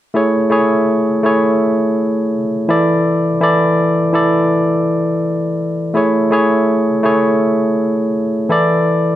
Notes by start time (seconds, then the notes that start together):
0.14 A3 E4 G#4 C#5
0.50 A3 E4 G#4 C#5
1.23 A3 E4 G#4 C#5
2.68 E3 E4 A4 D5
3.41 E3 E4 A4 D5
4.13 E3 E4 A4 D5
5.94 A3 E4 G#4 C#5
6.31 A3 E4 G#4 C#5
7.03 A3 E4 G#4 C#5
8.49 E3 E4 A4 D5